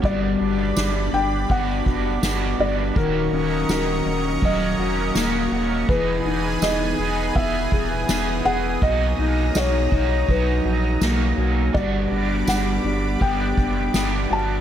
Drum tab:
RD |--x-x-x-|x-x-x-x-|----x-x-|--x-x-x-|
TB |--x---x-|--x---x-|--x---x-|--x---x-|
SD |--o---o-|--o---o-|--o---o-|--o---o-|
BD |o---oo--|o---o---|o---oo--|o--oo---|

RD |--x-x-x-|
TB |--x---x-|
SD |--o---o-|
BD |o---oo--|